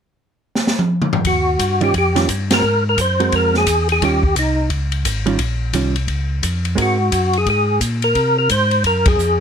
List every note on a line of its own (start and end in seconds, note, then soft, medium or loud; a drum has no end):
0.55 snare medium
0.67 snare medium
0.79 high tom medium
1.02 mid tom medium
1.13 floor tom medium
1.24 1.58 D#2 medium
1.24 1.84 F#4 medium
1.24 kick soft
1.24 ride medium
1.59 1.93 G2 medium
1.59 kick soft
1.59 hi-hat pedal soft
1.59 ride medium
1.81 1.93 D#3 medium
1.81 1.93 G3 medium
1.81 1.93 C#4 medium
1.81 1.93 F4 medium
1.81 1.94 G4 medium
1.81 ride soft
1.94 2.27 F2 medium
1.94 kick soft
1.94 ride soft
1.98 2.28 G4 medium
2.15 2.27 D#3 medium
2.15 2.28 G3 medium
2.15 2.27 C#4 medium
2.15 2.28 F4 medium
2.15 snare soft
2.15 ride soft
2.28 2.62 G2 medium
2.28 kick soft
2.28 hi-hat pedal medium
2.28 ride medium
2.51 2.62 G#3 soft
2.51 2.62 C4 medium
2.51 2.62 F#4 medium
2.51 2.63 A#4 medium
2.51 2.84 A#4 loud
2.51 snare medium
2.51 ride medium
2.63 2.97 G#2 medium
2.89 3.00 A#4 medium
2.97 3.31 F#2 medium
2.97 3.35 C5 medium
2.97 kick soft
2.97 hi-hat pedal medium
2.97 ride medium
3.20 3.65 G#3 soft
3.20 3.65 C4 medium
3.20 3.65 F#4 medium
3.20 3.65 A#4 medium
3.20 ride soft
3.32 3.66 F2 medium
3.32 3.56 A#4 medium
3.32 kick soft
3.32 ride medium
3.54 3.88 G#4 loud
3.54 snare soft
3.66 4.00 E2 medium
3.66 kick soft
3.66 hi-hat pedal medium
3.66 ride medium
3.89 4.04 G#4 medium
3.89 ride soft
4.01 4.35 D#2 medium
4.01 4.21 D#3 medium
4.01 4.22 G3 medium
4.01 4.22 C#4 medium
4.01 4.22 F4 medium
4.01 4.35 G4 medium
4.01 kick soft
4.01 ride medium
4.23 kick soft
4.35 4.69 C2 medium
4.35 4.70 D#4 medium
4.35 kick soft
4.35 hi-hat pedal medium
4.35 ride medium
4.70 5.04 C#2 medium
4.70 kick soft
4.70 ride soft
4.92 ride soft
5.05 5.38 G#1 medium
5.05 kick soft
5.05 hi-hat pedal medium
5.05 ride medium
5.26 5.38 D#3 medium
5.26 5.38 G3 medium
5.26 5.38 C#4 medium
5.26 5.39 F4 medium
5.26 ride soft
5.39 5.73 A#1 medium
5.39 kick soft
5.39 ride medium
5.73 6.07 C2 medium
5.73 5.94 D#3 soft
5.73 5.94 G3 soft
5.73 5.94 C#4 soft
5.73 5.94 F4 medium
5.73 kick soft
5.73 hi-hat pedal medium
5.73 ride medium
5.96 ride soft
6.08 6.42 C#2 medium
6.08 kick soft
6.08 ride soft
6.43 6.77 F2 medium
6.43 kick soft
6.43 hi-hat pedal medium
6.43 ride medium
6.65 ride soft
6.75 7.11 G#2 medium
6.75 6.96 G#3 medium
6.75 6.97 C4 medium
6.75 6.97 F#4 medium
6.75 6.97 A#4 medium
6.75 kick soft
6.75 ride medium
6.82 7.38 F#4 medium
7.12 7.46 F#2 medium
7.12 kick soft
7.12 hi-hat pedal medium
7.12 ride medium
7.33 ride soft
7.38 7.49 G#4 medium
7.46 7.80 G#2 medium
7.46 kick soft
7.46 ride soft
7.50 7.81 G#4 medium
7.80 8.14 A#2 medium
7.80 kick soft
7.80 hi-hat pedal medium
7.80 ride medium
8.02 8.37 A#4 medium
8.02 ride soft
8.15 8.49 C3 medium
8.15 kick soft
8.15 ride soft
8.38 8.50 A#4 medium
8.49 8.84 G#2 medium
8.49 8.83 C5 loud
8.49 kick soft
8.49 hi-hat pedal medium
8.49 ride medium
8.71 ride soft
8.84 9.18 F#2 medium
8.84 9.08 A#4 medium
8.84 kick soft
8.84 ride soft
9.06 9.39 G#4 loud
9.06 kick medium
9.06 ride medium
9.17 9.40 F2 medium
9.17 hi-hat pedal medium